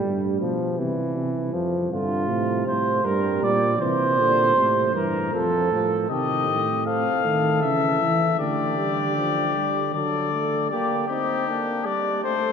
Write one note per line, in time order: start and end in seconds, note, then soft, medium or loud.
0.00 0.40 G3 medium
0.04 0.41 G2 medium
0.41 0.80 B2 medium
0.41 0.80 F3 medium
0.79 1.16 C3 medium
0.79 1.55 E3 medium
1.16 1.53 C3 medium
1.54 1.90 F2 medium
1.54 1.91 F3 medium
1.91 2.30 G2 medium
1.91 2.31 D3 medium
1.91 2.63 F4 medium
2.29 2.66 A2 medium
2.29 3.04 C3 medium
2.67 3.04 A2 medium
2.67 3.07 C5 medium
3.04 3.41 G2 medium
3.04 3.81 G3 medium
3.04 3.43 A#4 medium
3.43 3.79 A#2 medium
3.43 3.80 D5 medium
3.79 4.20 C3 medium
3.79 4.18 E3 medium
3.79 4.93 C5 loud
4.18 4.55 A#2 medium
4.18 4.55 D3 medium
4.56 4.94 A2 medium
4.56 4.97 C3 medium
4.94 5.32 G2 medium
4.94 5.33 E3 medium
4.94 5.33 A#4 medium
5.33 5.71 F2 medium
5.33 5.71 F3 medium
5.33 6.09 A4 loud
5.71 6.09 A2 medium
5.71 6.09 F3 medium
6.10 6.45 C3 medium
6.10 6.69 D#3 medium
6.10 6.88 G4 medium
6.10 6.82 D#5 medium
6.48 7.08 A2 medium
6.86 7.26 C4 medium
6.86 8.39 A4 medium
6.86 7.61 F5 medium
7.24 7.64 D#3 medium
7.24 7.64 A3 medium
7.62 8.01 C#3 medium
7.62 8.39 E3 medium
7.62 8.38 E5 medium
8.02 8.39 E3 medium
8.39 9.91 D3 medium
8.39 8.77 A3 medium
8.39 9.78 G4 medium
8.39 9.91 D5 medium
8.78 9.16 G3 medium
9.17 9.55 F3 medium
9.57 9.94 G3 medium
9.94 10.69 D3 medium
9.94 10.32 F#3 medium
9.94 10.70 A4 medium
9.94 10.69 D5 medium
10.33 10.70 A3 medium
10.70 11.07 A#3 medium
10.70 11.07 G4 medium
10.70 11.06 D5 medium
11.08 11.47 C4 medium
11.08 11.50 D#4 medium
11.08 11.87 G4 medium
11.48 11.87 A#3 medium
11.48 12.24 D4 medium
11.85 12.24 G3 medium
11.85 12.23 D5 medium
12.24 12.52 A3 medium
12.24 12.52 A4 medium
12.24 12.52 C5 medium